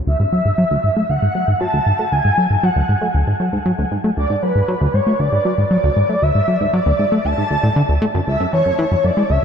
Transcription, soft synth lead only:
0.07 1.11 E5 loud
1.09 1.59 F#5 loud
1.60 2.13 A5 loud
2.11 2.64 G#5 loud
2.63 3.14 F#5 medium
4.17 4.41 D5 loud
4.42 4.95 B4 medium
4.94 5.20 C#5 medium
5.19 5.70 D5 loud
5.71 6.23 D5 loud
6.22 6.73 E5 loud
6.73 7.26 D5 loud
7.24 8.02 A5 loud
8.27 8.51 E5 medium
8.53 9.06 C#5 medium
9.04 9.32 D5 medium
9.30 9.45 E5 loud

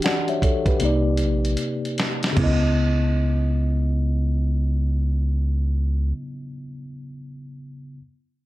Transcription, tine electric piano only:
0.00 0.78 E3 medium
0.00 0.79 D4 medium
0.00 0.83 F#4 medium
0.00 0.68 G4 medium
0.04 0.27 D5 soft
0.04 0.27 F#5 medium
0.29 0.42 C#5 medium
0.29 0.42 E5 medium
0.44 0.67 A4 medium
0.44 0.66 C#5 medium
0.67 1.04 G4 soft
0.67 1.04 B4 medium
0.79 2.33 C3 medium
0.79 2.34 A#3 medium
0.79 2.35 D#4 medium
0.85 2.36 D5 medium
2.32 6.08 C#3 medium
2.32 6.12 B3 medium
2.40 6.15 E4 medium
2.40 6.19 D#5 medium

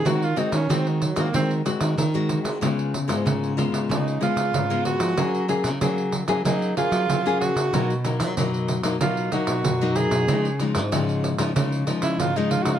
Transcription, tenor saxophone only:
0.07 0.25 F#4 medium
0.24 0.40 F4 medium
0.38 0.56 D#4 medium
0.54 0.73 C#4 medium
0.72 0.89 C4 medium
0.88 1.04 D#3 medium
1.03 1.19 F#3 medium
1.18 1.34 A#3 medium
1.35 1.54 C4 medium
3.91 4.21 D#4 medium
4.22 4.82 F4 medium
4.86 5.46 F#4 medium
6.46 6.76 D#4 medium
6.77 7.37 F4 medium
7.40 8.01 F#4 loud
9.02 9.31 F4 medium
9.33 9.98 F#4 medium
9.96 10.61 G#4 medium
12.03 12.21 E4 medium
12.20 12.38 F4 medium
12.36 12.52 D#4 medium
12.50 12.64 F4 medium
12.62 12.75 F#4 medium
12.74 12.79 F4 medium

